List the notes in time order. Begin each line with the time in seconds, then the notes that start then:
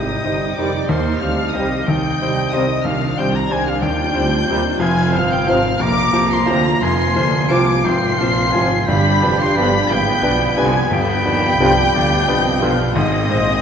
Already playing: G#1 C2 G#2 C3 G3 D#4 G4 C5 D#5 G5 D#6
0.24 G1 G2 G3 D#4 C5
0.57 F1 F2 D#3 G3 C4 D#4 G4 C5 D5 D6
0.88 D#2 D#3 C5 F5 C6
0.93 G4 C5
1.19 G3 C4 C5 F5 F6
1.23 D2 F5
1.51 G3 C4 D#5 D#6
1.55 C2 C3 G3 C4 G4 C5 D#5
1.85 D#2 D#3 G5 G6
1.89 C2 D#4 D#5 G5
2.21 C2 G3 C4 C5
2.52 C2 C3 G3 C4 G4 C5 D#5 D#6
2.84 C2 D#2 D#3 D4 F4 F5 F6
3.17 C2 G3 C4 C5 G5 G6
3.35 A#5 A#6
3.50 C2 C3 G3 C4 G4 C5 G#5 G#6
3.66 F5 F6
3.82 D#2 D#3 G5 G6
3.86 D#2
4.15 D2 G3 C4 C5
4.47 D#2 C3 G3 C4 G4 C5
4.51 D#2
4.79 F1 F2 C4 F5 G#5 G#6
4.84 G#5
5.12 F3 F4 C5 F5
5.16 G1 G2 F5 F6
5.30 G5 G6
5.46 G#1 G#2 C3 F3 C4 F4 C5 F5 F6
5.51 F5
5.79 F1 A#1 F2 A#2 A#3 F4 A#5 D6
5.83 D6 D7
6.13 C2 C3 F3 F4 C5
6.31 C6 C7
6.46 D2 C3 D3 F3 F4 C5 A#5 A#6
6.50 C4
6.82 F1 F2 F3 G#5 C6 C7
7.15 D2 D3 F3 F4 C5
7.50 C2 C3 F3 C4 F4 C5 D6 D7
7.54 C3 F3
7.84 F1 G#1 F2 G#2 C4 F4 G5 C6 C7
8.19 A#1 A#2 F3 F4 C5 F5
8.51 G#1 G#2 F3 C4 F4 C5 G#5
8.56 C3 F3 C5
8.86 G1 G2 D4 G4 G5 B5 B6
8.90 B5
9.22 F1 F2 F3 D4 B4
9.40 C6 C7
9.56 G1 G2 D3 F3 B3 D4 G4 B4 B5 B6
9.88 G1 G#1 G2 G#2 B3 B4 G5 B5 G6
9.92 G5
10.23 B1 B2 F3 D4 B4
10.57 C2 C3 F3 B3 D4 G4 B4 G#5 G#6
10.61 D3 F3
10.91 G1 D2 G2 D3 G4 G5 B5 G6
11.25 D#2 D#3 F3 D4 B4
11.60 C2 C3 D3 F3 B3 D4 G4 B4
11.93 G1 D2 G2 D3 B3 D5
12.27 C2 C3 F3 D4 B4 D#5
12.61 B1 B2 D3 F3 B3 D4 G4 B4 F5
12.95 G#1 G#2 C4 G#4 D#5 D#6
13.29 A#1 A#2 G#3 C4 C5